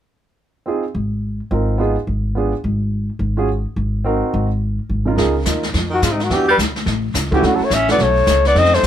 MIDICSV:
0, 0, Header, 1, 7, 480
1, 0, Start_track
1, 0, Tempo, 281822
1, 1133, Time_signature, 4, 2, 24, 8
1, 15102, End_track
2, 0, Start_track
2, 0, Title_t, "Muted trumpet"
2, 0, Program_c, 0, 59
2, 10112, Note_on_c, 0, 66, 78
2, 10289, Note_on_c, 0, 65, 66
2, 10314, Note_off_c, 0, 66, 0
2, 10429, Note_on_c, 0, 63, 65
2, 10454, Note_off_c, 0, 65, 0
2, 10624, Note_on_c, 0, 66, 64
2, 10649, Note_off_c, 0, 63, 0
2, 10789, Note_on_c, 0, 67, 70
2, 10814, Note_off_c, 0, 66, 0
2, 11059, Note_off_c, 0, 67, 0
2, 11077, Note_on_c, 0, 71, 85
2, 11174, Note_off_c, 0, 71, 0
2, 12498, Note_on_c, 0, 67, 74
2, 12703, Note_on_c, 0, 66, 68
2, 12728, Note_off_c, 0, 67, 0
2, 12861, Note_on_c, 0, 69, 68
2, 12886, Note_off_c, 0, 66, 0
2, 13024, Note_on_c, 0, 73, 80
2, 13050, Note_off_c, 0, 69, 0
2, 13182, Note_on_c, 0, 76, 94
2, 13207, Note_off_c, 0, 73, 0
2, 13455, Note_off_c, 0, 76, 0
2, 13476, Note_on_c, 0, 74, 79
2, 13664, Note_on_c, 0, 73, 81
2, 13689, Note_off_c, 0, 74, 0
2, 14415, Note_off_c, 0, 73, 0
2, 14437, Note_on_c, 0, 74, 83
2, 14629, Note_on_c, 0, 75, 90
2, 14654, Note_off_c, 0, 74, 0
2, 14896, Note_on_c, 0, 72, 84
2, 14921, Note_off_c, 0, 75, 0
2, 15102, Note_off_c, 0, 72, 0
2, 15102, End_track
3, 0, Start_track
3, 0, Title_t, "Upright piano"
3, 0, Program_c, 1, 0
3, 1121, Note_on_c, 1, 60, 50
3, 1137, Note_on_c, 1, 63, 47
3, 1151, Note_on_c, 1, 65, 48
3, 1158, Note_on_c, 1, 68, 58
3, 1394, Note_off_c, 1, 60, 0
3, 1401, Note_off_c, 1, 63, 0
3, 1409, Note_off_c, 1, 65, 0
3, 1412, Note_off_c, 1, 68, 0
3, 2568, Note_on_c, 1, 60, 47
3, 2582, Note_on_c, 1, 63, 43
3, 2583, Note_on_c, 1, 65, 43
3, 2609, Note_on_c, 1, 70, 54
3, 3027, Note_off_c, 1, 65, 0
3, 3028, Note_off_c, 1, 63, 0
3, 3033, Note_on_c, 1, 59, 56
3, 3052, Note_off_c, 1, 60, 0
3, 3053, Note_on_c, 1, 63, 55
3, 3053, Note_on_c, 1, 65, 52
3, 3071, Note_on_c, 1, 68, 63
3, 3073, Note_off_c, 1, 70, 0
3, 3311, Note_off_c, 1, 59, 0
3, 3321, Note_off_c, 1, 63, 0
3, 3321, Note_off_c, 1, 65, 0
3, 3330, Note_off_c, 1, 68, 0
3, 4005, Note_on_c, 1, 59, 50
3, 4025, Note_on_c, 1, 62, 45
3, 4025, Note_on_c, 1, 65, 45
3, 4044, Note_on_c, 1, 68, 58
3, 4277, Note_off_c, 1, 59, 0
3, 4287, Note_off_c, 1, 62, 0
3, 4287, Note_off_c, 1, 65, 0
3, 4297, Note_off_c, 1, 68, 0
3, 5742, Note_on_c, 1, 61, 55
3, 5753, Note_on_c, 1, 65, 53
3, 5758, Note_on_c, 1, 66, 50
3, 5770, Note_on_c, 1, 68, 66
3, 5913, Note_off_c, 1, 61, 0
3, 5919, Note_off_c, 1, 65, 0
3, 5921, Note_off_c, 1, 66, 0
3, 5927, Note_off_c, 1, 68, 0
3, 6888, Note_on_c, 1, 60, 63
3, 6903, Note_on_c, 1, 63, 57
3, 6906, Note_on_c, 1, 66, 55
3, 6916, Note_on_c, 1, 70, 74
3, 7610, Note_off_c, 1, 60, 0
3, 7617, Note_off_c, 1, 63, 0
3, 7619, Note_off_c, 1, 66, 0
3, 7624, Note_off_c, 1, 70, 0
3, 8610, Note_on_c, 1, 49, 58
3, 8611, Note_on_c, 1, 58, 53
3, 8621, Note_on_c, 1, 63, 49
3, 8636, Note_on_c, 1, 65, 53
3, 8645, Note_on_c, 1, 70, 60
3, 8767, Note_off_c, 1, 58, 0
3, 8779, Note_off_c, 1, 63, 0
3, 8791, Note_off_c, 1, 65, 0
3, 8792, Note_on_c, 1, 58, 64
3, 8805, Note_on_c, 1, 63, 56
3, 8817, Note_on_c, 1, 65, 56
3, 8827, Note_on_c, 1, 68, 66
3, 9072, Note_off_c, 1, 58, 0
3, 9078, Note_off_c, 1, 63, 0
3, 9084, Note_off_c, 1, 65, 0
3, 9089, Note_off_c, 1, 68, 0
3, 9249, Note_off_c, 1, 49, 0
3, 9267, Note_off_c, 1, 70, 0
3, 9288, Note_on_c, 1, 58, 52
3, 9296, Note_on_c, 1, 63, 47
3, 9317, Note_on_c, 1, 65, 47
3, 9318, Note_on_c, 1, 70, 57
3, 9559, Note_off_c, 1, 58, 0
3, 9563, Note_off_c, 1, 63, 0
3, 9574, Note_off_c, 1, 65, 0
3, 9574, Note_off_c, 1, 70, 0
3, 10740, Note_on_c, 1, 59, 55
3, 10752, Note_on_c, 1, 62, 52
3, 10767, Note_on_c, 1, 67, 59
3, 10769, Note_on_c, 1, 66, 49
3, 11005, Note_off_c, 1, 59, 0
3, 11011, Note_off_c, 1, 62, 0
3, 11018, Note_off_c, 1, 67, 0
3, 11019, Note_off_c, 1, 66, 0
3, 12455, Note_on_c, 1, 57, 69
3, 12480, Note_on_c, 1, 64, 66
3, 12482, Note_on_c, 1, 61, 65
3, 12490, Note_on_c, 1, 66, 71
3, 12625, Note_off_c, 1, 57, 0
3, 12630, Note_off_c, 1, 61, 0
3, 12642, Note_off_c, 1, 64, 0
3, 12646, Note_off_c, 1, 66, 0
3, 12650, Note_on_c, 1, 57, 56
3, 12655, Note_on_c, 1, 61, 51
3, 12676, Note_on_c, 1, 64, 51
3, 12682, Note_on_c, 1, 66, 60
3, 12919, Note_off_c, 1, 57, 0
3, 12922, Note_off_c, 1, 61, 0
3, 12932, Note_off_c, 1, 64, 0
3, 12935, Note_off_c, 1, 66, 0
3, 13433, Note_on_c, 1, 57, 57
3, 13437, Note_on_c, 1, 61, 49
3, 13448, Note_on_c, 1, 64, 49
3, 13455, Note_on_c, 1, 66, 61
3, 13598, Note_off_c, 1, 57, 0
3, 13600, Note_off_c, 1, 61, 0
3, 13605, Note_off_c, 1, 64, 0
3, 13609, Note_off_c, 1, 66, 0
3, 14556, Note_on_c, 1, 57, 54
3, 14568, Note_on_c, 1, 60, 47
3, 14568, Note_on_c, 1, 61, 48
3, 14580, Note_on_c, 1, 63, 56
3, 14832, Note_off_c, 1, 57, 0
3, 14838, Note_off_c, 1, 60, 0
3, 14838, Note_off_c, 1, 61, 0
3, 14844, Note_off_c, 1, 63, 0
3, 15102, End_track
4, 0, Start_track
4, 0, Title_t, "Tenor saxophone"
4, 0, Program_c, 2, 66
4, 10053, Note_on_c, 2, 51, 68
4, 10265, Note_on_c, 2, 49, 55
4, 10291, Note_off_c, 2, 51, 0
4, 10418, Note_on_c, 2, 48, 52
4, 10444, Note_off_c, 2, 49, 0
4, 10578, Note_on_c, 2, 51, 54
4, 10604, Note_off_c, 2, 48, 0
4, 10741, Note_on_c, 2, 52, 60
4, 10766, Note_off_c, 2, 51, 0
4, 11035, Note_off_c, 2, 52, 0
4, 11042, Note_on_c, 2, 55, 71
4, 11209, Note_off_c, 2, 55, 0
4, 12498, Note_on_c, 2, 52, 63
4, 12675, Note_on_c, 2, 50, 58
4, 12700, Note_off_c, 2, 52, 0
4, 12866, Note_on_c, 2, 54, 51
4, 12892, Note_off_c, 2, 50, 0
4, 13000, Note_on_c, 2, 57, 62
4, 13026, Note_off_c, 2, 54, 0
4, 13168, Note_on_c, 2, 61, 78
4, 13194, Note_off_c, 2, 57, 0
4, 13448, Note_off_c, 2, 61, 0
4, 13476, Note_on_c, 2, 59, 73
4, 13641, Note_on_c, 2, 57, 68
4, 13666, Note_off_c, 2, 59, 0
4, 14404, Note_off_c, 2, 57, 0
4, 14415, Note_on_c, 2, 59, 70
4, 14603, Note_on_c, 2, 60, 75
4, 14629, Note_off_c, 2, 59, 0
4, 14887, Note_on_c, 2, 57, 69
4, 14913, Note_off_c, 2, 60, 0
4, 15094, Note_off_c, 2, 57, 0
4, 15102, End_track
5, 0, Start_track
5, 0, Title_t, "Upright bass"
5, 0, Program_c, 3, 32
5, 1611, Note_on_c, 3, 32, 69
5, 2369, Note_off_c, 3, 32, 0
5, 2570, Note_on_c, 3, 32, 69
5, 3329, Note_off_c, 3, 32, 0
5, 3530, Note_on_c, 3, 32, 67
5, 4290, Note_off_c, 3, 32, 0
5, 4495, Note_on_c, 3, 32, 68
5, 5253, Note_off_c, 3, 32, 0
5, 5437, Note_on_c, 3, 32, 71
5, 6203, Note_off_c, 3, 32, 0
5, 6410, Note_on_c, 3, 32, 68
5, 7170, Note_off_c, 3, 32, 0
5, 7385, Note_on_c, 3, 32, 78
5, 8138, Note_off_c, 3, 32, 0
5, 8336, Note_on_c, 3, 32, 66
5, 8784, Note_off_c, 3, 32, 0
5, 8817, Note_on_c, 3, 37, 75
5, 9283, Note_off_c, 3, 37, 0
5, 9292, Note_on_c, 3, 39, 82
5, 9760, Note_off_c, 3, 39, 0
5, 9773, Note_on_c, 3, 41, 83
5, 10241, Note_off_c, 3, 41, 0
5, 10255, Note_on_c, 3, 44, 79
5, 10717, Note_off_c, 3, 44, 0
5, 10727, Note_on_c, 3, 40, 75
5, 11197, Note_off_c, 3, 40, 0
5, 11206, Note_on_c, 3, 38, 82
5, 11673, Note_off_c, 3, 38, 0
5, 11683, Note_on_c, 3, 33, 79
5, 12150, Note_off_c, 3, 33, 0
5, 12161, Note_on_c, 3, 37, 77
5, 12634, Note_off_c, 3, 37, 0
5, 12651, Note_on_c, 3, 38, 78
5, 12929, Note_off_c, 3, 38, 0
5, 13121, Note_on_c, 3, 33, 82
5, 13590, Note_off_c, 3, 33, 0
5, 13600, Note_on_c, 3, 35, 81
5, 14073, Note_off_c, 3, 35, 0
5, 14085, Note_on_c, 3, 37, 74
5, 14555, Note_off_c, 3, 37, 0
5, 14565, Note_on_c, 3, 41, 77
5, 15035, Note_off_c, 3, 41, 0
5, 15047, Note_on_c, 3, 39, 80
5, 15102, Note_off_c, 3, 39, 0
5, 15102, End_track
6, 0, Start_track
6, 0, Title_t, "Muted upright bass strokes"
6, 12940, Note_on_c, 9, 29, 35
6, 13110, Note_off_c, 9, 29, 0
6, 15102, End_track
7, 0, Start_track
7, 0, Title_t, "Drums"
7, 8819, Note_on_c, 9, 36, 17
7, 8822, Note_on_c, 9, 25, 41
7, 8822, Note_on_c, 9, 38, 38
7, 8989, Note_off_c, 9, 36, 0
7, 8993, Note_off_c, 9, 38, 0
7, 9291, Note_on_c, 9, 38, 55
7, 9293, Note_on_c, 9, 44, 54
7, 9296, Note_on_c, 9, 36, 23
7, 9462, Note_off_c, 9, 38, 0
7, 9463, Note_off_c, 9, 44, 0
7, 9466, Note_off_c, 9, 36, 0
7, 9590, Note_on_c, 9, 38, 37
7, 9761, Note_off_c, 9, 38, 0
7, 9773, Note_off_c, 9, 25, 0
7, 9773, Note_on_c, 9, 25, 46
7, 9773, Note_on_c, 9, 38, 38
7, 9776, Note_on_c, 9, 36, 18
7, 9943, Note_off_c, 9, 38, 0
7, 9946, Note_off_c, 9, 36, 0
7, 10255, Note_on_c, 9, 36, 19
7, 10261, Note_on_c, 9, 38, 52
7, 10263, Note_on_c, 9, 44, 55
7, 10425, Note_off_c, 9, 36, 0
7, 10431, Note_off_c, 9, 38, 0
7, 10433, Note_off_c, 9, 44, 0
7, 10555, Note_on_c, 9, 38, 34
7, 10725, Note_off_c, 9, 38, 0
7, 10734, Note_on_c, 9, 36, 20
7, 10737, Note_off_c, 9, 25, 0
7, 10737, Note_on_c, 9, 25, 47
7, 10737, Note_on_c, 9, 38, 39
7, 10904, Note_off_c, 9, 36, 0
7, 10907, Note_off_c, 9, 38, 0
7, 11215, Note_on_c, 9, 36, 19
7, 11221, Note_on_c, 9, 38, 55
7, 11223, Note_on_c, 9, 44, 50
7, 11386, Note_off_c, 9, 36, 0
7, 11391, Note_off_c, 9, 38, 0
7, 11393, Note_off_c, 9, 44, 0
7, 11510, Note_on_c, 9, 38, 37
7, 11680, Note_off_c, 9, 38, 0
7, 11691, Note_off_c, 9, 25, 0
7, 11691, Note_on_c, 9, 25, 46
7, 11691, Note_on_c, 9, 38, 38
7, 11692, Note_on_c, 9, 36, 21
7, 11861, Note_off_c, 9, 38, 0
7, 11862, Note_off_c, 9, 36, 0
7, 12171, Note_on_c, 9, 38, 57
7, 12173, Note_on_c, 9, 36, 19
7, 12173, Note_on_c, 9, 44, 56
7, 12341, Note_off_c, 9, 38, 0
7, 12343, Note_off_c, 9, 36, 0
7, 12343, Note_off_c, 9, 44, 0
7, 12469, Note_on_c, 9, 36, 53
7, 12640, Note_off_c, 9, 36, 0
7, 12653, Note_on_c, 9, 36, 22
7, 12657, Note_off_c, 9, 25, 0
7, 12657, Note_on_c, 9, 25, 45
7, 12657, Note_on_c, 9, 38, 38
7, 12824, Note_off_c, 9, 36, 0
7, 12828, Note_off_c, 9, 38, 0
7, 13128, Note_on_c, 9, 38, 55
7, 13130, Note_on_c, 9, 44, 55
7, 13132, Note_on_c, 9, 36, 23
7, 13299, Note_off_c, 9, 38, 0
7, 13300, Note_off_c, 9, 44, 0
7, 13302, Note_off_c, 9, 36, 0
7, 13426, Note_on_c, 9, 38, 36
7, 13596, Note_off_c, 9, 38, 0
7, 13605, Note_off_c, 9, 25, 0
7, 13605, Note_on_c, 9, 25, 44
7, 13605, Note_on_c, 9, 38, 38
7, 13610, Note_on_c, 9, 36, 19
7, 13776, Note_off_c, 9, 38, 0
7, 13781, Note_off_c, 9, 36, 0
7, 14081, Note_on_c, 9, 38, 58
7, 14082, Note_on_c, 9, 44, 50
7, 14087, Note_on_c, 9, 36, 23
7, 14251, Note_off_c, 9, 38, 0
7, 14253, Note_off_c, 9, 44, 0
7, 14258, Note_off_c, 9, 36, 0
7, 14388, Note_on_c, 9, 38, 34
7, 14558, Note_off_c, 9, 38, 0
7, 14569, Note_off_c, 9, 25, 0
7, 14569, Note_on_c, 9, 25, 41
7, 14569, Note_on_c, 9, 36, 18
7, 14569, Note_on_c, 9, 38, 35
7, 14728, Note_off_c, 9, 38, 0
7, 14728, Note_on_c, 9, 38, 27
7, 14739, Note_off_c, 9, 36, 0
7, 14884, Note_off_c, 9, 38, 0
7, 14884, Note_on_c, 9, 38, 39
7, 15042, Note_off_c, 9, 38, 0
7, 15042, Note_on_c, 9, 38, 53
7, 15044, Note_on_c, 9, 44, 50
7, 15047, Note_on_c, 9, 36, 24
7, 15102, Note_off_c, 9, 25, 0
7, 15102, Note_off_c, 9, 36, 0
7, 15102, Note_off_c, 9, 38, 0
7, 15102, Note_off_c, 9, 44, 0
7, 15102, End_track
0, 0, End_of_file